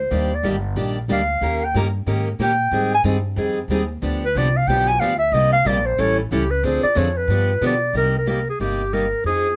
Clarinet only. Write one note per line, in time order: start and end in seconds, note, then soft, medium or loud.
0.00 0.36 C5 medium
0.34 0.46 D5 medium
1.12 1.66 F5 medium
1.65 1.76 G5 medium
2.42 2.90 G5 medium
2.94 3.02 G#5 loud
4.25 4.39 B4 medium
4.37 4.58 D5 medium
4.57 4.69 F5 medium
4.67 4.90 G5 loud
4.88 5.01 G#5 loud
5.00 5.18 F5 medium
5.19 5.34 E5 loud
5.33 5.52 D#5 loud
5.53 5.68 F5 loud
5.67 5.87 D5 loud
5.86 6.01 C5 medium
6.00 6.19 C#5 loud
6.20 6.33 E4 soft
6.32 6.52 G4 medium
6.51 6.66 B4 medium
6.64 6.83 C5 medium
6.83 6.98 D5 loud
6.97 7.18 C#5 medium
7.17 7.62 B4 medium
7.66 7.95 D5 medium
7.97 8.14 A#4 loud
8.18 8.28 A#4 medium
8.29 8.47 A#4 medium
8.49 8.60 G#4 medium
8.60 8.95 G4 medium
8.94 9.25 A#4 medium
9.26 9.56 G#4 loud